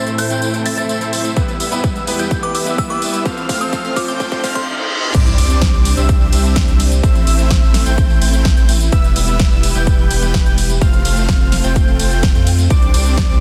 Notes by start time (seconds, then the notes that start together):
Already playing: A2 A3 E4 C5, riser
0.07 A3 C4 E4 C5 E5 E6, closed hi-hat, tambourine
0.18 C4 E4 A4 C5 G6, open hi-hat, tambourine
0.30 A3 C4 E4 C5 G5 G6, closed hi-hat, tambourine
0.42 closed hi-hat, tambourine
0.53 C4 E4 A4 C5, closed hi-hat, tambourine
0.66 A3 C4 E4 C5 E5 E6 A6, open hi-hat, tambourine
0.77 C4 E4 A4 E5 A6, closed hi-hat, tambourine
0.89 A3 C4 E4 C5 E5 E6, closed hi-hat, tambourine
1.01 C4 E4 A4 C5, closed hi-hat, tambourine
1.13 open hi-hat, tambourine
1.25 A3 C4 E4 C5 E5 E6, closed hi-hat, tambourine
1.36 E2 E3 G3 B3 E4 G4 B4 E5 E6, kick, closed hi-hat, tambourine
1.48 closed hi-hat, tambourine
1.60 G3 B3 E4 B4 E5 E6, open hi-hat, tambourine
1.71 B3 E4 G4 B4, closed hi-hat, tambourine
1.84 kick, closed hi-hat
1.96 G3 B3 E4 B4 E5 E6, closed hi-hat, tambourine
2.07 B3 E4 G4 B4, open hi-hat, tambourine
2.19 G3 B3 E4 B4 G5 G6, closed hi-hat, tambourine
2.31 kick, closed hi-hat, tambourine
2.42 B3 E4 G4 B4 D6, closed hi-hat, tambourine
2.55 G3 B3 E4 B4 E5 D6 E6, open hi-hat, tambourine
2.66 B3 E4 G4 E5, closed hi-hat, tambourine
2.78 G3 B3 E4 B4 E5 E6, kick, closed hi-hat, tambourine
2.89 B3 E4 G4 B4 D6, closed hi-hat, tambourine
3.02 open hi-hat, tambourine
3.14 G3 B3 E4 B4 E5 E6, closed hi-hat, tambourine
3.25 F2 F3 A3 C4 F4 A4 C5 F5 F6, kick, closed hi-hat, tambourine
3.37 closed hi-hat, tambourine
3.49 A3 C4 F4 C5 F5 F6, kick, open hi-hat, tambourine
3.60 C4 F4 A4 C5 E6, closed hi-hat, tambourine
3.73 kick, closed hi-hat, tambourine
3.85 A3 C4 F4 C5 F5 F6, closed hi-hat, tambourine
3.96 C4 F4 A4 C5 D6, kick, open hi-hat, tambourine
4.08 A3 C4 F4 C5 G5 D6 G6, closed hi-hat, tambourine
4.20 kick, closed hi-hat, tambourine, reverse cymbal
4.31 C4 F4 A4 C5, kick, closed hi-hat, tambourine
4.43 A3 C4 F4 A4 C5 F5 F6, kick, open hi-hat, tambourine
4.55 C6, kick, closed hi-hat, tambourine
5.15 C2 C3 G3 C4 D4 G4 C5 D5 D6, kick, closed hi-hat, crash, tambourine, sub drop
5.26 closed hi-hat, tambourine
5.38 C2 G3 C4 D4 C5 D5 D6, open hi-hat, ride, tambourine
5.50 closed hi-hat, tambourine
5.62 kick, snare, closed hi-hat, tambourine
5.73 C2 G3 C4 D4 C5 D5 D6, tambourine
5.85 open hi-hat, ride, tambourine
5.97 C2 G3 C4 D4 C5 E5 E6, closed hi-hat, tambourine
6.09 kick, closed hi-hat, tambourine
6.21 tambourine
6.32 C2 G3 C4 D4 C5 E5 E6, open hi-hat, ride, tambourine
6.44 closed hi-hat, tambourine
6.56 kick, snare, closed hi-hat, tambourine
6.68 C2 G3 C4 D4 C5 E5 E6, closed hi-hat, tambourine
6.80 open hi-hat, ride, tambourine
6.92 closed hi-hat, tambourine
7.03 A1 A3 C4 E4 C5 E5 E6, kick, closed hi-hat, tambourine
7.15 closed hi-hat, tambourine
7.27 A1 A3 C4 E4 C5 E5 E6, open hi-hat, ride, tambourine
7.39 closed hi-hat, tambourine
7.51 kick, snare, closed hi-hat, tambourine
7.62 A1 A3 C4 E4 C5 E5 E6, tambourine
7.74 snare, open hi-hat, ride, tambourine
7.86 A1 A3 C4 E4 C5 G5 G6, closed hi-hat, tambourine
7.98 kick, closed hi-hat, tambourine
8.10 tambourine
8.21 A1 A3 C4 E4 C5 G5 G6, open hi-hat, ride, tambourine
8.33 closed hi-hat, tambourine
8.45 kick, snare, closed hi-hat, tambourine
8.57 A1 A3 C4 E4 C5 G5 G6, closed hi-hat, tambourine
8.69 open hi-hat, ride, tambourine
8.81 closed hi-hat, tambourine
8.92 E1 E3 G3 B3 E4 G4 B4 E5 E6, kick, closed hi-hat
9.04 closed hi-hat, tambourine
9.16 E1 G3 B3 E4 B4 E5 E6, open hi-hat, ride, tambourine
9.28 closed hi-hat, tambourine
9.40 kick, snare, closed hi-hat, tambourine
9.51 E1 G3 B3 E4 B4 E5 E6, tambourine
9.63 open hi-hat, ride, tambourine
9.75 E1 G3 B3 E4 B4 G5 G6, closed hi-hat, tambourine
9.87 kick, closed hi-hat, tambourine
9.99 tambourine
10.11 E1 G3 B3 E4 B4 G5 G6, open hi-hat, ride, tambourine
10.22 closed hi-hat, tambourine
10.34 kick, snare, closed hi-hat
10.46 E1 G3 B3 E4 B4 G5 G6, closed hi-hat, tambourine
10.58 open hi-hat, ride, tambourine
10.70 closed hi-hat, tambourine
10.81 F1 A3 C4 F4 C5 F5 F6, kick, closed hi-hat, tambourine
10.93 closed hi-hat, tambourine
11.05 F1 A3 C4 F4 C5 F5 F6, open hi-hat, ride, tambourine
11.17 closed hi-hat, tambourine
11.29 kick, snare, closed hi-hat
11.40 F1 A3 C4 F4 C5 F5 F6, tambourine
11.52 snare, open hi-hat, ride, tambourine
11.64 F1 A3 C4 F4 C5 G5 G6, closed hi-hat, tambourine
11.76 kick, closed hi-hat, tambourine
11.88 tambourine
11.99 F1 A3 C4 F4 C5 G5 G6, open hi-hat, ride, tambourine
12.11 closed hi-hat, tambourine
12.23 kick, snare, closed hi-hat, tambourine
12.35 F2 A3 C4 F4 C5 G5 G6, closed hi-hat, tambourine
12.47 open hi-hat, ride, tambourine
12.59 closed hi-hat, tambourine
12.70 C2 C3 G3 C4 D4 G4 C5 D5 D6, kick, closed hi-hat, tambourine
12.82 closed hi-hat, tambourine
12.94 C2 G3 C4 D4 C5 D5 D6, open hi-hat, ride, tambourine
13.06 closed hi-hat, tambourine
13.17 kick, snare, closed hi-hat
13.29 C2 G3 C4 D4 C5 D5 D6, tambourine